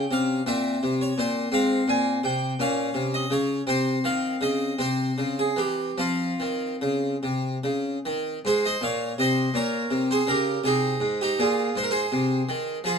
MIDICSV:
0, 0, Header, 1, 2, 480
1, 0, Start_track
1, 0, Key_signature, -4, "minor"
1, 0, Tempo, 710059
1, 1034, Time_signature, 6, 3, 24, 8
1, 1991, Tempo, 732601
1, 2951, Tempo, 787402
1, 3911, Tempo, 821918
1, 5351, Tempo, 729927
1, 5352, Key_signature, -4, "major"
1, 8333, End_track
2, 0, Start_track
2, 0, Title_t, "Harpsichord"
2, 0, Program_c, 0, 6
2, 0, Note_on_c, 0, 61, 51
2, 0, Note_on_c, 0, 79, 104
2, 72, Note_on_c, 0, 48, 73
2, 78, Note_off_c, 0, 79, 0
2, 85, Note_on_c, 0, 77, 89
2, 267, Note_off_c, 0, 48, 0
2, 286, Note_off_c, 0, 77, 0
2, 290, Note_off_c, 0, 61, 0
2, 314, Note_on_c, 0, 46, 69
2, 314, Note_on_c, 0, 60, 51
2, 323, Note_on_c, 0, 76, 98
2, 508, Note_off_c, 0, 46, 0
2, 561, Note_on_c, 0, 48, 63
2, 627, Note_off_c, 0, 76, 0
2, 686, Note_on_c, 0, 73, 84
2, 750, Note_off_c, 0, 48, 0
2, 796, Note_on_c, 0, 46, 69
2, 800, Note_off_c, 0, 73, 0
2, 806, Note_on_c, 0, 72, 82
2, 986, Note_off_c, 0, 46, 0
2, 1006, Note_off_c, 0, 60, 0
2, 1026, Note_on_c, 0, 44, 67
2, 1028, Note_on_c, 0, 60, 51
2, 1039, Note_off_c, 0, 72, 0
2, 1039, Note_on_c, 0, 77, 98
2, 1222, Note_off_c, 0, 44, 0
2, 1270, Note_on_c, 0, 46, 67
2, 1278, Note_off_c, 0, 77, 0
2, 1281, Note_on_c, 0, 80, 101
2, 1465, Note_off_c, 0, 46, 0
2, 1484, Note_off_c, 0, 80, 0
2, 1511, Note_on_c, 0, 48, 60
2, 1519, Note_on_c, 0, 79, 97
2, 1703, Note_off_c, 0, 48, 0
2, 1725, Note_off_c, 0, 60, 0
2, 1754, Note_on_c, 0, 46, 66
2, 1756, Note_off_c, 0, 79, 0
2, 1757, Note_on_c, 0, 61, 54
2, 1766, Note_on_c, 0, 77, 94
2, 1944, Note_off_c, 0, 46, 0
2, 1990, Note_on_c, 0, 48, 59
2, 2062, Note_off_c, 0, 77, 0
2, 2120, Note_on_c, 0, 75, 78
2, 2178, Note_off_c, 0, 48, 0
2, 2226, Note_on_c, 0, 49, 70
2, 2232, Note_off_c, 0, 75, 0
2, 2236, Note_on_c, 0, 73, 94
2, 2417, Note_off_c, 0, 49, 0
2, 2435, Note_off_c, 0, 73, 0
2, 2440, Note_off_c, 0, 61, 0
2, 2465, Note_on_c, 0, 48, 67
2, 2467, Note_on_c, 0, 60, 48
2, 2478, Note_on_c, 0, 72, 90
2, 2659, Note_off_c, 0, 48, 0
2, 2711, Note_on_c, 0, 51, 59
2, 2714, Note_off_c, 0, 72, 0
2, 2716, Note_on_c, 0, 77, 90
2, 2905, Note_off_c, 0, 51, 0
2, 2950, Note_on_c, 0, 49, 58
2, 2956, Note_off_c, 0, 77, 0
2, 2960, Note_on_c, 0, 75, 90
2, 3137, Note_off_c, 0, 49, 0
2, 3161, Note_off_c, 0, 60, 0
2, 3179, Note_on_c, 0, 48, 59
2, 3180, Note_on_c, 0, 60, 46
2, 3188, Note_off_c, 0, 75, 0
2, 3190, Note_on_c, 0, 72, 83
2, 3370, Note_off_c, 0, 48, 0
2, 3419, Note_on_c, 0, 49, 54
2, 3543, Note_off_c, 0, 72, 0
2, 3549, Note_on_c, 0, 68, 70
2, 3613, Note_off_c, 0, 49, 0
2, 3654, Note_on_c, 0, 52, 61
2, 3665, Note_on_c, 0, 67, 65
2, 3666, Note_off_c, 0, 68, 0
2, 3857, Note_off_c, 0, 52, 0
2, 3885, Note_off_c, 0, 60, 0
2, 3906, Note_on_c, 0, 53, 56
2, 3907, Note_on_c, 0, 60, 41
2, 3913, Note_off_c, 0, 67, 0
2, 3917, Note_on_c, 0, 65, 71
2, 4105, Note_off_c, 0, 53, 0
2, 4153, Note_on_c, 0, 51, 55
2, 4351, Note_off_c, 0, 51, 0
2, 4396, Note_on_c, 0, 49, 48
2, 4591, Note_off_c, 0, 49, 0
2, 4638, Note_on_c, 0, 48, 61
2, 4647, Note_off_c, 0, 65, 0
2, 4831, Note_off_c, 0, 48, 0
2, 4875, Note_on_c, 0, 49, 48
2, 5070, Note_off_c, 0, 49, 0
2, 5119, Note_on_c, 0, 51, 60
2, 5304, Note_off_c, 0, 51, 0
2, 5326, Note_off_c, 0, 60, 0
2, 5350, Note_on_c, 0, 44, 59
2, 5359, Note_on_c, 0, 72, 97
2, 5367, Note_on_c, 0, 68, 65
2, 5473, Note_off_c, 0, 68, 0
2, 5477, Note_off_c, 0, 72, 0
2, 5485, Note_on_c, 0, 75, 85
2, 5493, Note_on_c, 0, 72, 58
2, 5544, Note_off_c, 0, 44, 0
2, 5590, Note_on_c, 0, 46, 65
2, 5596, Note_off_c, 0, 72, 0
2, 5600, Note_off_c, 0, 75, 0
2, 5600, Note_on_c, 0, 77, 80
2, 5609, Note_on_c, 0, 73, 60
2, 5782, Note_off_c, 0, 46, 0
2, 5800, Note_off_c, 0, 77, 0
2, 5824, Note_off_c, 0, 73, 0
2, 5833, Note_on_c, 0, 48, 57
2, 5840, Note_on_c, 0, 75, 67
2, 5852, Note_on_c, 0, 72, 53
2, 6023, Note_off_c, 0, 48, 0
2, 6064, Note_off_c, 0, 72, 0
2, 6067, Note_on_c, 0, 46, 59
2, 6074, Note_off_c, 0, 75, 0
2, 6076, Note_on_c, 0, 73, 92
2, 6083, Note_on_c, 0, 70, 72
2, 6259, Note_off_c, 0, 46, 0
2, 6307, Note_on_c, 0, 48, 58
2, 6379, Note_off_c, 0, 73, 0
2, 6411, Note_off_c, 0, 70, 0
2, 6441, Note_on_c, 0, 72, 85
2, 6449, Note_on_c, 0, 68, 61
2, 6500, Note_off_c, 0, 48, 0
2, 6546, Note_on_c, 0, 49, 66
2, 6552, Note_off_c, 0, 68, 0
2, 6556, Note_off_c, 0, 72, 0
2, 6556, Note_on_c, 0, 70, 84
2, 6564, Note_on_c, 0, 67, 69
2, 6740, Note_off_c, 0, 49, 0
2, 6757, Note_off_c, 0, 70, 0
2, 6780, Note_off_c, 0, 67, 0
2, 6788, Note_on_c, 0, 48, 67
2, 6798, Note_on_c, 0, 68, 82
2, 6806, Note_on_c, 0, 63, 61
2, 6982, Note_off_c, 0, 48, 0
2, 7030, Note_on_c, 0, 44, 62
2, 7136, Note_off_c, 0, 63, 0
2, 7157, Note_off_c, 0, 68, 0
2, 7167, Note_on_c, 0, 67, 63
2, 7174, Note_on_c, 0, 63, 61
2, 7227, Note_off_c, 0, 44, 0
2, 7279, Note_off_c, 0, 63, 0
2, 7282, Note_on_c, 0, 46, 61
2, 7283, Note_off_c, 0, 67, 0
2, 7290, Note_on_c, 0, 68, 82
2, 7298, Note_on_c, 0, 65, 61
2, 7476, Note_off_c, 0, 46, 0
2, 7516, Note_off_c, 0, 65, 0
2, 7524, Note_on_c, 0, 44, 66
2, 7528, Note_off_c, 0, 68, 0
2, 7534, Note_on_c, 0, 72, 93
2, 7574, Note_off_c, 0, 72, 0
2, 7575, Note_on_c, 0, 70, 80
2, 7617, Note_off_c, 0, 70, 0
2, 7625, Note_on_c, 0, 72, 93
2, 7631, Note_on_c, 0, 68, 74
2, 7713, Note_off_c, 0, 44, 0
2, 7763, Note_on_c, 0, 48, 60
2, 7950, Note_off_c, 0, 48, 0
2, 8005, Note_on_c, 0, 51, 74
2, 8190, Note_off_c, 0, 51, 0
2, 8214, Note_off_c, 0, 68, 0
2, 8237, Note_off_c, 0, 72, 0
2, 8238, Note_on_c, 0, 53, 62
2, 8249, Note_on_c, 0, 68, 87
2, 8256, Note_on_c, 0, 65, 70
2, 8333, Note_off_c, 0, 53, 0
2, 8333, Note_off_c, 0, 65, 0
2, 8333, Note_off_c, 0, 68, 0
2, 8333, End_track
0, 0, End_of_file